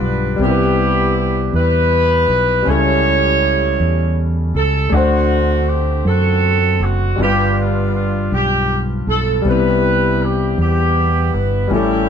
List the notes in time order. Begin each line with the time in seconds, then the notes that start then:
Already playing: G2 G3 B3 D4 F4 B4
0.01 B1 B4
0.36 C2 C3 G3 B3
0.41 B3 E4 G4 A#4
0.50 B4
1.17 G4
1.53 E2 E4 G4 B4
2.28 B1
2.62 C#3 G3 C#4
2.67 C#2 E4 G4 A4 C#5
3.80 E2
4.55 C#2 A4
4.89 D2 D3 A3 C4 D4 F#4
4.94 C5 F#5
5.68 G4
6.05 F#2 C4 F#4 A4
6.80 F#1 F#4
7.16 G1 G2 G3 D4
7.21 B3 D4 F4 G4 B4
7.57 F4
7.94 F4
8.32 B1 G4
9.07 B1 A4
9.42 C2 G3 B3
9.46 C3 E4 G4 B4
9.50 B4
10.23 G4
10.58 E2 B3 E4 G4
11.34 G1 B4
11.68 A1 A2 G3 C#4
11.72 C#4 E4 G4 A4